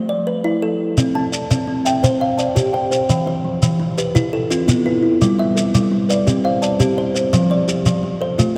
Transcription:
Already playing: A3
0.09 D5
0.27 B4
0.44 E4
0.62 A4
0.98 C4, shekere
1.15 C4 A5
1.32 D5, shekere
1.51 C4, shekere
1.67 C4
1.85 E5 G5, shekere
2.03 C5, shekere
2.20 C5 F5
2.38 D5 A5, shekere
2.55 G4, shekere
2.73 C5 G5
2.91 C5, shekere
3.10 E3, shekere
3.26 E3 C5
3.44 F3
3.62 E3, shekere
3.80 E3
3.98 G4 B4, shekere
4.15 E4, shekere
4.33 E4 A4
4.50 C4 F4, shekere
4.68 B3, shekere
4.86 E4 B4
5.03 E4
5.22 G3, shekere
5.39 G3 E5
5.56 A4, shekere
5.75 G3, shekere
5.91 G3
6.09 B4 D5, shekere
6.27 C4 G4, shekere
6.44 C5 F5
6.62 D5 A5, shekere
6.80 C4 G4, shekere
6.98 C5
7.15 C5, shekere
7.33 F3, shekere
7.50 F3 D5
7.68 G4, shekere
7.86 F3, shekere
8.03 F3
8.21 A4 C5
8.38 A3 F4, shekere

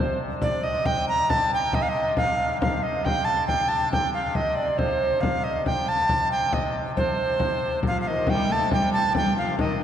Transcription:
Already playing: C3 C5
0.21 frame drum
0.41 D5, frame drum
0.63 D#5
0.85 G5, frame drum
1.08 A#5
1.30 A5, frame drum
1.51 G5, frame drum
1.73 D#5, frame drum
1.82 F5
1.89 D#5
2.17 F5, frame drum
2.39 frame drum
2.61 F5, frame drum
2.83 D#5
3.05 C3 G5, frame drum
3.25 A5
3.47 G5, frame drum
3.68 A5
3.92 G5, frame drum
4.14 F5, frame drum
4.35 D#5, frame drum
4.55 D5
4.78 C5, frame drum
5.21 F5, frame drum
5.44 D#5, frame drum
5.66 G5, frame drum
5.88 A5
6.09 frame drum
6.31 G5
6.53 D#5, frame drum
6.75 frame drum
6.97 C5, frame drum
7.40 frame drum
7.63 frame drum
7.83 F3, frame drum
7.87 F5
8.01 F5
8.06 D#3 D#5, frame drum
8.11 F3
8.18 D#3
8.27 C3 G3 G5, frame drum
8.48 A3 A5
8.71 G3 G5, frame drum
8.93 A5
9.15 G3 G5, frame drum
9.36 F3 F5, frame drum
9.58 D#3 D#5, frame drum
9.79 D3

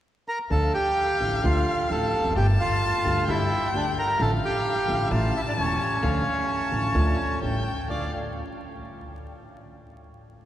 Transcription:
0.28 A#4 A#5
0.50 D2 D3 F3 A3 F4 A4 F5 A5
0.74 G4 G5
1.20 A1 A2 D3 F3 A3 F4
1.43 D2 D3 F3 A3 F4 F5
1.89 A1 A2 D3 F3 A3 F4 A4 A5
2.18 E1 E2
2.24 F1 F2
2.30 F#1 F#2
2.35 G1 G2 D3 G3 A3 G4 G5 A5
2.60 F4 F5
3.04 D2 D3 G3 A3 G4
3.27 G1 G2 D3 G3 A3 E4 G4 E5 G5
3.73 D2 D3 G3 A3 D4 G4 D5
3.98 A#4 A#5
4.19 A1 A2 D3 F3 A3 F4 A4 F5 A5
4.45 G4 G5
4.88 A1 A2 D3 F3 A3 F4
5.10 A1 A2 C#3 E3 A3 E4 F4 F5 A5
5.36 E4 E5
5.48 D4 D5
5.56 E1 E2 C#3 E3 A3 C#4 E4 C#5
6.03 D2 D3 F3 A3 F4 F5
6.49 A5
6.72 A1 A2 D3 F3 A3 F4
6.95 D2 D3 F3 A3 F4
7.42 A1 A2 C#3 G3 A3 E4 G5
7.89 D2 A3 D4 F4 D5 F5

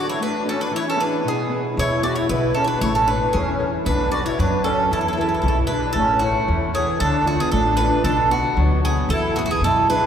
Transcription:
Already playing: D3 D4 F#4 A4
0.09 E4 C#5
0.20 A3 D4 B4
0.45 D4 F#4 A4
0.49 C#4
0.61 D4 B4
0.71 E3 E4
0.76 C#5
0.87 C#4 A4
0.96 B3 D4 E4 G#4
1.00 B4
1.24 B2 B3 G#4
1.49 B3 E4 G#4
1.77 E2 B2 E4 C#5
2.02 B3 E4 F#4 G#4 D5
2.16 E4 C#5
2.29 B1 B2 E4 B4
2.54 B3 C#4 E4 G#4 A4
2.64 D4 E4 B4 C#5
2.81 A1 A3 E4 C#5
2.95 C#4 A4
3.07 D4 E4 A4 B4 C#5
3.33 E2 E3 C#4 G#4
3.59 E4 A4 C#5
3.85 B1 B3 D4 B4
4.11 F#4 B4 D5
4.26 E4 C#5
4.38 F#2 F#3 D4 B4
4.64 C#4 F#4 A4 B4 D5
4.91 E2 E3 E4 A4
5.01 A4
5.08 A4
5.13 A4
5.17 E4 G#4 A4 B4
5.29 A4
5.34 A4
5.42 B1 B2 A4
5.48 A4
5.67 D4 E4 G#4 B4
5.93 A1 A3 A4
5.97 C#4
6.19 E4 F#4 A4 C#5
6.23 A3
6.48 E2 E3
6.73 B3 E4 G#4 A4 C#5
6.99 D2 D3 D4 A4
7.25 D4 F4 F#4 A4
7.29 A3
7.39 B3 G#4
7.51 A1 A3 D4 A4
7.77 D4 F4 A4 B4
7.82 D4
8.04 B1 B2 D4 A4
8.30 B3 D4 F#4
8.57 D2 F#3
8.85 B3 D4 F#4 G#4
9.09 E2 E3 E4 A4
9.36 A3 B3 E4 F#4 G#4
9.44 A3 F#4
9.50 B3 G#4
9.61 F#2 B2 E4 A4
9.88 B3 D4 E4 G#4 B4

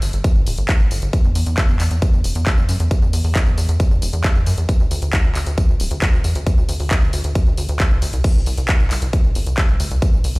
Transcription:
0.02 G1, open hi-hat, tambourine
0.13 G1, closed hi-hat, tambourine
0.24 kick, closed hi-hat, tambourine
0.35 G1, tambourine
0.46 D1, open hi-hat, tambourine
0.58 G1, closed hi-hat, tambourine
0.69 kick, clap, closed hi-hat, tambourine
0.80 A1, tambourine
0.91 G1, open hi-hat, tambourine
1.02 G1, closed hi-hat, tambourine
1.13 kick, closed hi-hat, tambourine
1.24 E2, tambourine
1.35 E2, open hi-hat, tambourine
1.46 E2, closed hi-hat, tambourine
1.58 kick, clap, closed hi-hat, tambourine
1.69 E2, tambourine
1.80 E2, clap, open hi-hat, tambourine
1.91 E2, closed hi-hat, tambourine
2.02 kick, closed hi-hat, tambourine
2.13 E2, tambourine
2.24 E1, open hi-hat, tambourine
2.35 E2, closed hi-hat, tambourine
2.46 kick, clap, closed hi-hat, tambourine
2.58 E2, tambourine
2.69 F#2, open hi-hat, tambourine
2.80 E2, closed hi-hat, tambourine
2.91 kick, closed hi-hat, tambourine
3.02 E2, tambourine
3.13 E2, open hi-hat, tambourine
3.24 E2, open hi-hat, tambourine
3.35 kick, clap, closed hi-hat, tambourine
3.46 E2, tambourine
3.58 E2, open hi-hat, tambourine
3.69 E2, closed hi-hat, tambourine
3.80 kick, closed hi-hat, tambourine
3.91 E2, tambourine
4.02 E1, open hi-hat, tambourine
4.13 E2, closed hi-hat, tambourine
4.24 kick, clap, closed hi-hat, tambourine
4.35 E2, tambourine
4.46 F#2, open hi-hat, tambourine
4.58 E2, closed hi-hat, tambourine
4.69 kick, closed hi-hat, tambourine
4.80 D2, tambourine
4.91 D2, open hi-hat, tambourine
5.02 D2, closed hi-hat, tambourine
5.13 kick, clap, closed hi-hat, tambourine
5.24 D2, tambourine
5.35 D2, clap, open hi-hat, tambourine
5.46 D2, closed hi-hat, tambourine
5.58 kick, closed hi-hat, tambourine
5.69 D2, tambourine
5.80 D1, open hi-hat, tambourine
5.91 D2, closed hi-hat, tambourine
6.02 kick, clap, closed hi-hat, tambourine
6.13 D2, tambourine
6.24 E2, open hi-hat, tambourine
6.35 D2, closed hi-hat, tambourine
6.46 kick, closed hi-hat, tambourine
6.58 D2, tambourine
6.69 D2, open hi-hat, tambourine
6.80 D2, open hi-hat, tambourine
6.91 kick, clap, closed hi-hat, tambourine
7.02 D2, tambourine
7.13 D2, open hi-hat, tambourine
7.24 D2, closed hi-hat, tambourine
7.35 kick, closed hi-hat, tambourine
7.46 D2, tambourine
7.58 D2, open hi-hat, tambourine
7.69 D2, closed hi-hat, tambourine
7.80 kick, clap, closed hi-hat, tambourine
7.91 C2, tambourine
8.02 D2, open hi-hat, tambourine
8.13 C2, closed hi-hat, tambourine
8.24 kick, closed hi-hat, crash, tambourine
8.35 C2, tambourine
8.46 C2, open hi-hat, tambourine
8.58 C2, closed hi-hat, tambourine
8.69 kick, clap, closed hi-hat, tambourine
8.80 C2, tambourine
8.91 C2, clap, open hi-hat, tambourine
9.02 C2, closed hi-hat, tambourine
9.13 kick, closed hi-hat, tambourine
9.24 C2, tambourine
9.35 G1, open hi-hat, tambourine
9.46 C2, closed hi-hat, tambourine
9.58 kick, clap, closed hi-hat, tambourine
9.69 C2, tambourine
9.80 D2, open hi-hat, tambourine
9.91 C2, closed hi-hat, tambourine
10.02 kick, closed hi-hat, tambourine
10.13 C2, tambourine
10.24 C2, open hi-hat, tambourine
10.35 C2, open hi-hat, tambourine

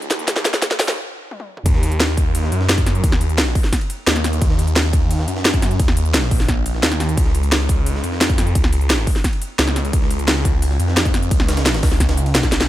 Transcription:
0.02 closed hi-hat
0.11 D#2, snare, closed hi-hat
0.19 closed hi-hat
0.28 D#2, kick, snare, closed hi-hat
0.36 snare
0.45 snare, closed hi-hat
0.54 snare, closed hi-hat
0.62 kick, snare, closed hi-hat
0.71 snare
0.79 D#2, snare, open hi-hat
0.88 snare
1.31 high tom
1.40 high tom
1.57 mid tom
1.66 D#2, kick, closed hi-hat, ride
1.74 snare
1.83 closed hi-hat, ride
1.92 closed hi-hat, ride
2.00 snare, closed hi-hat, ride
2.17 kick, closed hi-hat, ride
2.35 closed hi-hat, ride
2.43 snare
2.52 F#2, closed hi-hat, ride
2.61 snare
2.69 snare, closed hi-hat, ride
2.78 kick, closed hi-hat
2.86 snare, closed hi-hat, ride
2.95 closed hi-hat
3.04 D#2, kick, closed hi-hat, ride
3.12 snare
3.21 closed hi-hat, ride
3.29 closed hi-hat
3.38 snare, closed hi-hat, ride
3.55 kick, open hi-hat, ride
3.64 snare
3.73 kick, snare, closed hi-hat, ride
3.81 ride
3.90 closed hi-hat, ride
4.07 D#2, snare, closed hi-hat, ride
4.16 snare, closed hi-hat
4.24 snare, closed hi-hat, ride
4.33 closed hi-hat, ride
4.42 D#2, kick, closed hi-hat, ride
4.50 snare
4.59 closed hi-hat, ride
4.67 closed hi-hat, ride
4.76 snare, closed hi-hat, ride
4.93 kick, closed hi-hat, ride
5.11 closed hi-hat, ride
5.19 snare
5.28 F#2, closed hi-hat, ride
5.36 snare
5.45 snare, closed hi-hat, ride
5.54 kick, closed hi-hat
5.62 snare, closed hi-hat, ride
5.71 closed hi-hat
5.80 D#2, kick, closed hi-hat, ride
5.88 snare
5.97 closed hi-hat, ride
6.05 closed hi-hat
6.14 snare, closed hi-hat, ride
6.31 A#1, kick, open hi-hat, ride
6.40 snare
6.49 kick, snare, closed hi-hat
6.66 closed hi-hat, ride
6.74 snare
6.83 D#2, snare, closed hi-hat, ride
6.92 snare, closed hi-hat
7.00 snare, closed hi-hat, ride
7.09 closed hi-hat, ride
7.17 C#2, kick, closed hi-hat, ride
7.26 snare
7.35 closed hi-hat, ride
7.43 closed hi-hat, ride
7.52 snare, closed hi-hat, ride
7.69 kick, closed hi-hat, ride
7.86 closed hi-hat, ride
7.95 snare
8.04 F2, closed hi-hat, ride
8.12 snare
8.21 snare, closed hi-hat, ride
8.30 kick, closed hi-hat
8.38 snare, closed hi-hat, ride
8.47 closed hi-hat
8.55 C#2, kick, closed hi-hat, ride
8.64 snare
8.73 closed hi-hat, ride
8.81 closed hi-hat
8.90 snare, closed hi-hat, ride
9.07 kick, open hi-hat, ride
9.16 snare
9.24 kick, snare, closed hi-hat, ride
9.33 ride
9.42 closed hi-hat, ride
9.59 C#2, snare, closed hi-hat, ride
9.68 snare, closed hi-hat
9.76 snare, closed hi-hat, ride
9.85 closed hi-hat, ride
9.93 C#2, kick, closed hi-hat, ride
10.02 snare
10.11 closed hi-hat, ride
10.19 closed hi-hat, ride
10.28 snare, closed hi-hat, ride
10.45 kick, closed hi-hat, ride
10.62 closed hi-hat, ride
10.71 snare
10.80 F2, closed hi-hat, ride
10.88 snare
10.97 snare, closed hi-hat, ride
11.05 kick, closed hi-hat
11.14 snare, closed hi-hat, ride
11.23 closed hi-hat
11.31 C#2, kick, closed hi-hat, ride
11.40 snare
11.48 snare, closed hi-hat, ride
11.57 snare, closed hi-hat, ride
11.66 snare, closed hi-hat, ride
11.74 snare, ride
11.83 C#2, kick, snare, open hi-hat, ride
11.92 snare
12.00 kick, snare, closed hi-hat, ride
12.09 snare, ride
12.17 closed hi-hat
12.26 ride
12.35 B1, snare, closed hi-hat, ride
12.43 kick, snare, closed hi-hat
12.52 snare, closed hi-hat, ride
12.61 snare, closed hi-hat, ride

